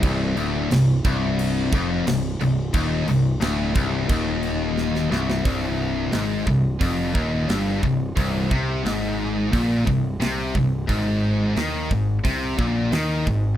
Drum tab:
CC |x-x-x-x-x-x-x-x-|x-x-x-x-x-x-----|----------------|----------------|
HH |----------------|----------------|o---o---o---o---|o---o---o---o---|
SD |----o-------o---|----o-------oooo|----o-------o---|----o-------o---|
BD |o-----o---o-----|o-----o-o-------|o-----o-o-o---o-|o-o-----o-o---o-|

CC |----------------|
HH |o---o---o---o---|
SD |----o-------o---|
BD |o-----o-o-o---o-|